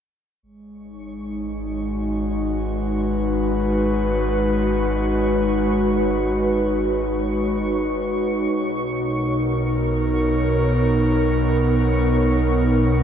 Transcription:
0.42 G#1 G#3 C#5 C#6
0.79 D#4
1.59 F#4
2.52 B4
8.52 B1 B2
8.96 A#4
9.75 B3

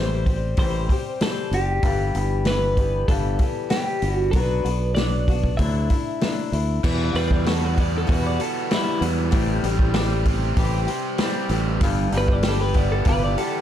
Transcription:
Already playing: A1 E3 C5
0.00 G3 C4 G4
0.26 C4 G4, kick, open hi-hat
0.31 G3
0.57 A1 A2 G3 C5, kick, open hi-hat
0.62 E3 C4 G4
0.89 C4 G4, kick, open hi-hat
0.94 G3
1.21 E3 G3 C4 A4, snare, open hi-hat
1.25 G4
1.51 F#1 G4, open hi-hat
1.55 G3 C4
1.83 G1 G2 D3 E3 G3 B3 G4, kick, open hi-hat
2.15 G1 E3 G3 B3 G4, open hi-hat
2.45 E3 G3 B3 G4 B4, snare, open hi-hat
2.77 E3 G3 B3 G4, kick, open hi-hat
3.08 G1 G2 D3 E3 G3 B3 G4 A4, kick, open hi-hat
3.39 E3 G3 B3 G4, kick, open hi-hat
3.70 E3 G3 B3 G4, snare, open hi-hat
3.74 G4
4.02 G1 E3 G3 B3 G4, open hi-hat
4.12 F#4
4.31 B1 B2 B3 B4, kick, open hi-hat
4.35 F#3 D4 F#4
4.64 B1 B3 D4 F#4, open hi-hat
4.95 F#3 B3 D5, snare, open hi-hat
5.00 D4 F#4
5.28 B3 D4 F#4, kick, open hi-hat
5.44 kick
5.57 D2 D3 F#3 A3 D4 E4 E5, kick, open hi-hat
5.90 A3 D4 E4, kick, open hi-hat
6.21 F#3 A3 D4 E4, snare, open hi-hat
6.52 D2 A3 D4 E4, open hi-hat
6.83 E2 B2 E3 G3 B3 F#4, kick, crash
7.13 E2 E3 G3 B3 F#4 B4, open hi-hat
7.31 D5, kick
7.44 E3 G3 B3 F#4, snare, open hi-hat
7.48 A4
7.65 B4
7.76 E3 G3 B3 F#4, kick, open hi-hat
7.80 D5
7.98 A4
8.07 E2 B2 E3 G3 B3 F#4, kick, open hi-hat
8.11 B4
8.27 D5
8.39 E3 G3 B3 F#4 A4, open hi-hat
8.71 E3 G3 B3 E4 F#4, snare, open hi-hat
9.01 E2 E3 G3 B3 F#4, open hi-hat
9.31 A1 A2 E3 G3 C4 G4, kick, open hi-hat
9.63 A1 G3 C4 G4, open hi-hat
9.79 kick
9.94 E3 G3 C4 G4, snare, open hi-hat
10.25 G3 C4 G4, kick, open hi-hat
10.57 A1 A2 E3 G3 C4 G4, kick, open hi-hat
10.87 G3 C4 G4, open hi-hat
11.18 E3 G3 C4 G4, snare, open hi-hat
11.49 A1 E3 C4 G4, open hi-hat
11.54 G3
11.81 G1 G2 D3 E3 G3 B3, kick, open hi-hat
11.85 G4
12.12 G1 G3 B3 G4, open hi-hat
12.16 E3 B4
12.28 kick
12.32 D5
12.42 E3 G3 B3 G4, snare, open hi-hat
12.49 A4
12.61 B4
12.74 E3 G3 B3 G4 D5, kick, open hi-hat
12.92 A4
13.05 G1 G2 D3 E3 G3 B3 G4, kick, open hi-hat
13.09 B4
13.24 D5
13.38 E3 G3 B3 G4 A4, open hi-hat

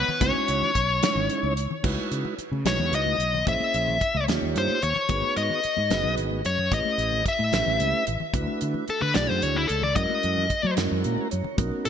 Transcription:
Already playing: B3 B4
0.08 muted fretless electric bass stroke, low conga
0.20 C#2 G#3 C#4 D#4 E4 F#4 C#5, kick, closed hi-hat, muted conga
0.35 muted fretless electric bass stroke, high conga
0.48 C#2, closed hi-hat
0.62 low conga
0.75 B1, kick, closed hi-hat
1.01 G#3 C#4 D#4 E4 C#5, snare, closed hi-hat, muted conga
1.15 G#1, low conga
1.30 closed hi-hat
1.43 C#2, high conga
1.57 closed hi-hat
1.71 low conga
1.83 C#2 G#3 D#4 E4 F#4 B4, kick, crash, muted conga, low conga
1.98 high conga
2.11 C#3, closed hi-hat
2.25 low conga
2.38 muted fretless electric bass stroke, closed hi-hat
2.52 C#3, high conga
2.65 B1 G#3 D#4 E4 F#4 B4 C#5, snare, closed hi-hat, muted conga
2.79 E2, low conga
2.92 C#2 D#5, closed hi-hat
3.07 high conga, low conga
3.18 B1, closed hi-hat
3.34 low conga
3.46 A#1 A#3 C#4 E4 G#4 C5 E5, kick, closed hi-hat, muted conga, low conga
3.60 muted fretless electric bass stroke, high conga
3.74 A#1, closed hi-hat
3.88 low conga
4.01 kick, closed hi-hat
4.15 C#2, high conga
4.28 D#2 A#3 D#4 F4 G4 C#5, snare, closed hi-hat, muted conga
4.42 D#2, low conga
4.55 G2 C5, closed hi-hat
4.69 high conga, low conga
4.82 D#2 C#5, closed hi-hat
4.96 muted fretless electric bass stroke, low conga
5.09 G#1 B3 D#4 F#4 G#4 B4, kick, closed hi-hat, muted conga, low conga
5.22 high conga
5.37 G#2 D#5, closed hi-hat
5.50 low conga
5.63 muted fretless electric bass stroke, closed hi-hat
5.77 G#2, high conga
5.90 F#1 B3 D#4 F#4 G#4 B4, snare, closed hi-hat, muted conga
6.04 B1, low conga
6.18 G#1, closed hi-hat
6.31 high conga, low conga
6.45 F#2 C#5, closed hi-hat
6.58 low conga
6.72 A1 A3 C#4 E4 G4 B4 D#5, kick, closed hi-hat, muted conga
6.85 muted fretless electric bass stroke, high conga
6.98 A1, closed hi-hat
7.12 low conga
7.26 E5, kick, closed hi-hat
7.39 A2, high conga, low conga
7.52 A1 A3 C#4 E4 G4 B4, snare, closed hi-hat, muted conga
7.66 A1, low conga
7.80 C#2, closed hi-hat
7.94 high conga
8.07 A1, closed hi-hat, low conga
8.20 low conga
8.34 D2 A3 D4 E4 F#4 B4, kick, closed hi-hat, muted conga, low conga
8.47 high conga
8.61 D3, closed hi-hat
8.74 low conga
8.88 A4, muted fretless electric bass stroke, closed hi-hat
9.01 D3 B4, high conga
9.14 B1 A3 D4 E4 F#4 G#4 D5, snare, closed hi-hat, muted conga
9.29 F#2 C5, low conga
9.42 D2 C#5, closed hi-hat
9.55 E4, high conga, low conga
9.67 C#2 A4, closed hi-hat
9.82 D5, low conga
9.95 F#2 G#3 C#4 E4 F#4 A#4 D#5, kick, closed hi-hat, muted conga, low conga
10.10 muted fretless electric bass stroke, high conga
10.23 F#2, closed hi-hat
10.37 low conga
10.50 kick, closed hi-hat
10.63 F#3, high conga
10.76 F#2 G#3 C#4 E4 F#4 A#4, snare, closed hi-hat, muted conga
10.91 F#2, low conga
11.04 A#2 A#5, closed hi-hat
11.18 high conga, low conga
11.31 F#2 C#5, closed hi-hat
11.44 muted fretless electric bass stroke, low conga
11.57 B1 B3 C#4 D#4 F#4 A#4, kick, closed hi-hat, muted conga, low conga
11.71 high conga
11.85 B2 B4, closed hi-hat

